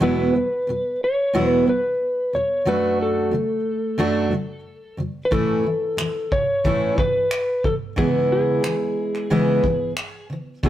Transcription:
0.00 E2 B2 F#3 G#3 B3 E4 B4
0.33 E2 B2 F#3
0.67 E2 B2 F#3
1.04 C#5
1.33 E2 B2 F#3 G#3 B3 E4
1.50 B4
1.66 E2 B2 F#3 B4
2.33 E2 B2 F#3 C#5
2.65 F#2 F#3 A3 D4 F#4 B4
3.02 A4
3.31 F#2 C#3 F#3
3.98 F#2 F#3 A3 D4 F#4
4.31 F#2 C#3 F#3
4.97 F#2 C#3 F#3
5.25 B4
5.31 A2 E3 A3 C#4 E4 A4, kick
5.64 A2 E3
5.97 A2 E3, finger snap
6.32 C#5, kick
6.64 A2 E3 A3 C#4 E4, kick
6.96 A2 E3 B4, kick
7.31 finger snap
7.64 A2 E3 A4, kick
7.96 C#3 E3 G#3 B3 E4 G#4, kick
8.32 G#4
8.63 C#3 E3, finger snap
9.15 finger snap
9.30 C#3 E3 G#3 B3 E4
9.63 C#3 E3, kick
9.97 finger snap
10.30 C#3 E3
10.63 E2 B2 F#3 G#3 B3 E4 G#4, kick

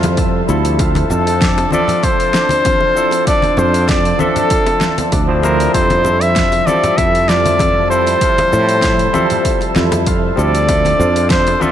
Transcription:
Already playing: F2 F3 G3 C4 E4 F4 A4 C5 E5 A5
0.03 open hi-hat, high bongo, high conga, cabasa
0.17 A4, kick, open hi-hat, cabasa
0.47 D2 G3 C4 E4 F4 A4, high bongo, cabasa
0.65 open hi-hat, cabasa
0.78 F3 C4 D4 F4 D5 E5, kick, open hi-hat, high bongo, cabasa
0.83 A4
0.95 open hi-hat, high conga
1.10 F2 A4, low conga, cabasa
1.27 open hi-hat, high bongo, cabasa
1.42 D4, kick, snare, open hi-hat, cabasa
1.58 open hi-hat, high bongo
1.71 F3 C4 D4 F4 A4 D5 E5, high conga, low conga, cabasa
1.88 open hi-hat, low conga, cabasa
2.03 A4 C5, kick, open hi-hat, high bongo, cabasa
2.20 open hi-hat
2.33 D4, snare, high bongo, cabasa
2.49 open hi-hat, high conga, cabasa
2.65 F4, kick, open hi-hat, low conga, cabasa
2.81 high bongo
2.95 F3 C4 D4 E4 A4, cabasa
3.11 open hi-hat, high bongo, cabasa
3.25 F3 C4 D4 D5 E5, kick, open hi-hat, cabasa
3.29 A4
3.42 open hi-hat, high conga
3.57 F2 F4 C5, high bongo, low conga, cabasa
3.74 open hi-hat, cabasa
3.89 A4 D5, kick, snare, open hi-hat, high bongo, cabasa
4.05 open hi-hat
4.18 F3 C4 D4 A4 E5, high conga, low conga, cabasa
4.36 open hi-hat, high bongo, low conga, cabasa
4.50 F4, kick, open hi-hat, cabasa
4.67 open hi-hat, high bongo
4.81 A4, snare, low conga, cabasa
4.98 open hi-hat, high conga, cabasa
5.12 D2 D4, kick, open hi-hat, high bongo, cabasa
5.27 F3 C4 D4 E4 C5
5.43 F3 C4 D4 E4 F4 A#4 C5, high bongo, cabasa
5.60 open hi-hat, cabasa
5.72 F2 F3 G3 C4 E4 A4 C5 E5 A5, kick, open hi-hat, high bongo, cabasa
5.77 A4
5.90 open hi-hat, high conga
6.04 E4, high bongo, low conga, cabasa
6.21 E5, open hi-hat, cabasa
6.35 F4, kick, snare, open hi-hat, cabasa
6.52 open hi-hat, high bongo
6.66 F3 G3 C4 A4 D5 E5, high conga, low conga, cabasa
6.84 open hi-hat, high bongo, low conga, cabasa
6.96 F2 E4 E5, kick, open hi-hat, cabasa
7.15 open hi-hat
7.28 F4 D5, snare, high bongo, cabasa
7.46 open hi-hat, high conga, cabasa
7.59 A4, kick, open hi-hat, high bongo, low conga, cabasa
7.89 G3 C4 E4 F4 A4 C5, cabasa
8.07 open hi-hat, high bongo, cabasa
8.18 G3 C4 F4 E5, kick, open hi-hat, cabasa
8.22 F3 A4
8.38 open hi-hat, high bongo, high conga
8.52 A2 A4, low conga, cabasa
8.69 open hi-hat, cabasa
8.82 E4, kick, snare, open hi-hat, high bongo, cabasa
8.99 open hi-hat
9.13 F3 G3 C4 F4 A4 E5, high bongo, high conga, low conga, cabasa
9.30 open hi-hat, low conga, cabasa
9.45 A4, kick, open hi-hat, cabasa
9.61 open hi-hat, high bongo
9.76 F2 E4, snare, low conga, cabasa
9.92 open hi-hat, high bongo, high conga, cabasa
10.06 F4, kick, open hi-hat, cabasa
10.36 D2 G3 C4 E4 F4 A4 D5, high bongo, cabasa
10.55 open hi-hat, cabasa
10.65 F3 C4 D4, kick, open hi-hat, high bongo
10.69 A4 D5 E5 A5, cabasa
10.85 open hi-hat, high conga
11.00 F2 F4, low conga, cabasa
11.16 open hi-hat, high bongo, cabasa
11.30 A4 C5, kick, snare, open hi-hat, cabasa
11.47 open hi-hat, high bongo
11.60 F3 C4 D4 F4 A4 E5, high conga, low conga, cabasa

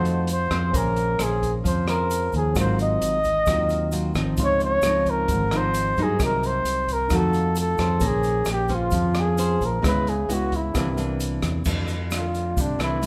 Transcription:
Already playing: F2 F3 A3 D#4 F#4 A4 C5 D#5 F#5
0.05 closed hi-hat, shaker
0.27 closed hi-hat, shaker
0.32 C5
0.51 F2 C#4 G#4 C5, kick, cross-stick, closed hi-hat, shaker
0.71 A#1 A#3 C#4 A#4, kick, closed hi-hat, shaker
0.76 A#4 C5 G#5
0.96 closed hi-hat, shaker
1.19 A#1 C#4 G#4 C5, cross-stick, closed hi-hat, shaker
1.23 G#4
1.42 kick, closed hi-hat, shaker
1.64 F2 F3 C5, kick, closed hi-hat, shaker
1.87 C#4 G#4 A#4 C5, cross-stick, closed hi-hat, shaker
2.11 closed hi-hat, shaker
2.32 D#2, kick, closed hi-hat, shaker
2.37 G#4
2.53 G#1 G#2 F#3 C4 F4 A#4, kick, cross-stick, closed hi-hat, shaker
2.59 C5 F5
2.79 D#5, closed hi-hat, shaker
3.02 G#1, closed hi-hat, shaker
3.24 kick, closed hi-hat, shaker
3.46 D#2 D#3 F#3 C4 F4, kick, cross-stick, closed hi-hat, shaker
3.69 closed hi-hat, shaker
3.92 F#3 C4 F4, closed hi-hat, shaker
4.14 G#1 F3 C4 D#4, kick, cross-stick, closed hi-hat, shaker
4.37 C#2 C#3 F4 C6, kick, closed hi-hat, shaker
4.42 C#5 D#5
4.60 closed hi-hat, shaker
4.65 C#5
4.82 C#2 F3 C4 D#4, cross-stick, closed hi-hat, shaker
5.06 kick, closed hi-hat, shaker
5.10 A#4
5.28 G#1 G#2, kick, closed hi-hat, shaker
5.51 F3 C4 D#4 F4 C5 F5, cross-stick, closed hi-hat, shaker
5.57 C5
5.74 closed hi-hat, shaker
5.97 G2 F#3 A#3 D#4, kick, closed hi-hat, shaker
6.03 G#4
6.17 C2 C3 C4 F#4 A#4, kick, cross-stick, closed hi-hat, shaker
6.23 A#4 D#5
6.43 C5, closed hi-hat, shaker
6.64 C2, closed hi-hat, shaker
6.88 kick, closed hi-hat, shaker
6.93 A#4
7.08 F2 F3 A3 D#4 F#4 A4, kick, cross-stick, closed hi-hat, shaker
7.12 D#4 F#4 A4 F5
7.33 closed hi-hat, shaker
7.55 closed hi-hat, shaker
7.60 A4
7.78 F2 C#4 G#4 C5, kick, cross-stick, closed hi-hat, shaker
7.98 A#1 A#3 C#4 A#4, kick, closed hi-hat, shaker
8.03 C5 G#5
8.07 G#4
8.23 closed hi-hat, shaker
8.45 A#1, cross-stick, closed hi-hat, shaker
8.52 G4
8.68 C#4 G#4 C5, kick, closed hi-hat, shaker
8.75 F4
8.91 F2 F3, kick, closed hi-hat, shaker
9.14 cross-stick, closed hi-hat, shaker
9.20 G#4
9.38 C#4 G#4 C5, closed hi-hat, shaker
9.61 A#1, kick, closed hi-hat, shaker
9.66 A#4
9.81 C#2 C#3 G#3 B3 C#4 E4 G#4 B4, kick, cross-stick, closed hi-hat, shaker
9.86 B4 E5
10.07 G#4, closed hi-hat, shaker
10.29 C#2 G#3 B3 E4, closed hi-hat, shaker
10.33 F#4
10.52 E4, kick, closed hi-hat, shaker
10.72 C2 C3 E3 A#3 D4 A#4 C5, kick, cross-stick, closed hi-hat, shaker
10.78 E5
10.97 E3 A#3 D4, closed hi-hat, shaker
11.20 closed hi-hat, shaker
11.42 E2, kick, cross-stick, closed hi-hat, shaker
11.65 F2 E3 A3 D4, kick, crash, shaker
11.88 closed hi-hat, shaker
12.11 A3 D4, cross-stick, closed hi-hat, shaker
12.16 F4
12.35 closed hi-hat, shaker
12.57 C2 C3, kick, closed hi-hat, shaker
12.61 D4
12.79 C2 E3 A3 D4 E4, cross-stick, closed hi-hat, shaker
13.01 E3 A3 D4, closed hi-hat, shaker

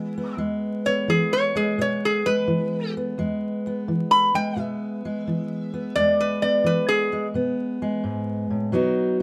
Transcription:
Already playing: E3 G#3 B3 E4
0.18 B3
0.37 E2 G#3
0.86 B3 C#5
1.08 E3 G#4
1.33 C#5
1.55 G#3 G#4
1.78 B2 B3 C#5
2.05 G#4
2.26 G#3 B4
2.48 E3
2.97 B3
3.18 E2 G#3
3.67 B3
3.88 E3
4.11 B5
4.34 G#3 G5
4.56 B2 B3 E5
5.05 G#3
5.27 E3
5.74 B3
5.95 E2 G#3 D5
6.20 B4
6.42 B3 D5
6.64 E3 B4
6.89 G#4
7.13 G#3
7.34 B2 B3
7.82 G#3
8.04 G#2
8.50 A2
8.72 B2 F#3 B3 D#4 F#4

